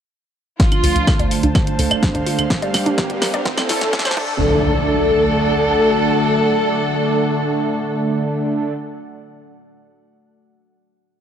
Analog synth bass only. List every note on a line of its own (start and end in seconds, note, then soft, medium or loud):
0.84 0.93 D2 medium
0.96 1.05 D2 medium
1.19 1.29 D2 medium
1.43 1.53 D2 medium
1.79 1.89 D2 loud
1.91 2.00 D1 medium
2.15 2.24 D2 medium
2.39 2.48 D2 medium
2.74 2.84 G1 medium
2.86 2.96 G1 medium
3.10 3.19 G1 medium
3.34 3.43 G1 medium
3.69 3.79 A1 medium
3.81 3.91 A2 medium
4.05 4.15 A1 medium
4.17 5.80 D2 medium